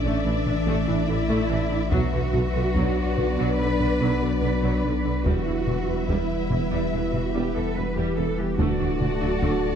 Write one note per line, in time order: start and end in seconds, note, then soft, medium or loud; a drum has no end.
0.00 1.94 A1 medium
0.00 1.92 E3 medium
0.00 1.75 A3 medium
0.00 1.88 A3 medium
0.00 0.25 C#4 medium
0.00 1.75 D4 medium
0.00 1.88 D4 medium
0.00 1.88 D5 medium
0.00 2.75 E5 medium
0.04 0.13 A1 medium
0.04 0.17 A3 medium
0.04 0.24 A3 medium
0.24 0.33 A1 medium
0.24 0.34 E3 medium
0.24 1.08 D4 medium
0.24 0.38 A4 medium
0.46 0.54 A1 medium
0.46 0.54 D3 medium
0.46 0.59 A4 medium
0.46 taiko low-mid soft
0.66 0.74 A1 medium
0.66 0.75 A1 medium
0.66 0.79 A3 medium
0.66 0.86 A3 medium
0.87 0.95 A1 medium
0.87 0.95 E3 medium
0.87 1.00 E4 medium
1.08 1.16 A1 medium
1.08 1.17 A1 medium
1.08 1.17 D3 medium
1.08 1.21 D4 medium
1.08 1.92 E4 loud
1.29 1.37 A1 medium
1.29 1.49 A3 medium
1.29 1.42 A3 medium
1.49 1.57 A1 medium
1.49 1.58 A1 medium
1.49 1.57 E3 medium
1.49 1.62 A4 medium
1.70 1.79 A1 medium
1.70 1.78 D3 medium
1.70 1.83 D4 medium
1.91 2.00 B1 medium
1.91 5.27 B1 medium
1.91 2.11 F#3 medium
1.91 5.26 F#3 medium
1.91 2.04 B3 medium
1.91 5.25 B3 medium
1.91 5.22 B3 medium
1.91 5.21 D4 medium
1.91 5.22 D4 medium
1.91 3.55 F#4 loud
1.91 5.21 B4 medium
1.91 5.24 B4 medium
1.91 taiko loud
2.12 2.20 B1 medium
2.12 2.21 D3 medium
2.12 2.25 B4 medium
2.33 2.41 B1 medium
2.33 2.42 B1 medium
2.33 2.41 D3 medium
2.33 2.46 F#4 medium
2.33 taiko low-mid medium
2.53 2.62 B1 medium
2.53 2.63 D3 medium
2.53 2.66 B4 medium
2.75 2.83 B1 medium
2.75 2.95 F#3 medium
2.75 2.87 B3 medium
2.75 5.26 D5 medium
2.75 taiko medium
3.16 3.25 B1 medium
3.16 3.26 B1 medium
3.16 3.25 D3 medium
3.16 3.29 B4 medium
3.16 taiko low-mid medium
3.37 3.46 B1 medium
3.37 3.57 F#3 medium
3.37 3.50 B3 medium
3.58 3.67 B1 medium
3.58 3.66 D3 medium
3.58 3.71 B4 medium
3.58 4.40 B4 loud
3.79 3.87 B1 medium
3.79 3.87 D3 medium
3.79 3.92 B4 medium
3.79 taiko low-mid soft
4.00 4.08 B1 medium
4.00 4.09 B1 medium
4.00 4.19 F#3 medium
4.00 4.13 B3 medium
4.21 4.29 B1 medium
4.21 4.29 D3 medium
4.21 4.34 F#4 medium
4.41 4.50 B1 medium
4.41 4.51 B1 medium
4.41 4.50 D3 medium
4.41 4.54 D4 medium
4.41 4.68 B4 medium
4.63 4.71 B1 medium
4.63 4.82 F#3 medium
4.63 4.75 B3 medium
4.69 4.96 B4 medium
4.83 4.91 B1 medium
4.83 4.92 B1 medium
4.83 4.92 D3 medium
4.83 4.96 B4 medium
4.97 5.25 B4 medium
5.04 5.12 B1 soft
5.04 5.12 D3 medium
5.04 5.17 D4 medium
5.25 5.34 E1 medium
5.25 8.61 E1 medium
5.25 5.34 E2 medium
5.25 5.38 E3 medium
5.25 8.23 G3 medium
5.25 5.45 G3 medium
5.25 8.59 G3 medium
5.25 8.23 B3 medium
5.25 8.55 B3 medium
5.25 8.59 E4 medium
5.25 6.09 F#4 medium
5.25 8.54 B4 medium
5.25 8.35 B4 medium
5.25 8.39 E5 medium
5.25 taiko medium
5.46 5.55 E2 soft
5.46 5.54 E3 soft
5.46 5.59 E4 medium
5.67 5.75 E1 soft
5.67 5.76 E2 soft
5.67 5.75 E3 soft
5.67 5.79 B3 medium
5.67 taiko low-mid medium
5.88 5.96 E2 soft
5.88 5.96 E3 soft
5.88 6.00 E4 medium
6.08 6.17 E1 medium
6.08 6.18 E2 medium
6.08 6.21 E3 loud
6.08 6.28 G3 medium
6.08 7.13 E4 medium
6.08 taiko medium
6.50 6.59 E1 soft
6.50 6.59 E2 soft
6.50 6.59 E3 soft
6.50 6.63 E4 medium
6.50 taiko low-mid medium
6.71 6.81 E2 medium
6.71 6.83 E3 medium
6.71 6.91 G3 medium
6.92 7.00 E1 soft
6.92 7.01 E2 soft
6.92 7.00 E3 medium
6.92 7.04 E4 medium
7.12 7.22 E2 soft
7.12 7.21 E3 soft
7.12 7.25 E4 medium
7.12 7.34 F#4 medium
7.12 taiko low-mid soft
7.33 7.42 E1 medium
7.33 7.43 E2 medium
7.33 7.46 E3 medium
7.33 7.53 G3 medium
7.33 7.54 G4 medium
7.54 7.63 E2 soft
7.54 7.63 E3 soft
7.54 7.67 B3 medium
7.54 7.76 A4 medium
7.75 7.84 E1 soft
7.75 7.85 E2 soft
7.75 7.84 E3 soft
7.75 7.88 G3 medium
7.75 7.96 B4 medium
7.96 8.05 E2 medium
7.96 8.09 E3 medium
7.96 8.16 G3 medium
7.96 8.17 G4 medium
8.17 8.25 E1 soft
8.17 8.27 E2 soft
8.17 8.25 E3 soft
8.17 8.30 E4 medium
8.17 8.38 A4 medium
8.38 8.47 E2 soft
8.38 8.47 E3 medium
8.38 8.50 G3 medium
8.38 8.59 G4 medium
8.58 9.75 D1 medium
8.58 8.66 D2 medium
8.58 8.67 D2 medium
8.58 8.71 D3 medium
8.58 9.75 F#3 medium
8.58 9.75 A3 medium
8.58 8.78 A3 medium
8.58 9.75 D4 medium
8.58 9.75 F#4 loud
8.58 9.75 D5 medium
8.58 9.75 A5 medium
8.58 taiko loud
8.80 8.88 D2 medium
8.80 8.88 F#3 soft
8.80 8.92 D4 medium
9.00 9.09 D2 medium
9.00 9.08 D2 medium
9.00 9.08 D3 soft
9.00 9.13 A3 medium
9.00 taiko low-mid medium
9.21 9.30 D2 medium
9.21 9.29 F#3 medium
9.21 9.34 D4 medium
9.42 9.50 D2 medium
9.42 9.51 D2 medium
9.42 9.54 D3 loud
9.42 9.62 A3 medium
9.42 taiko medium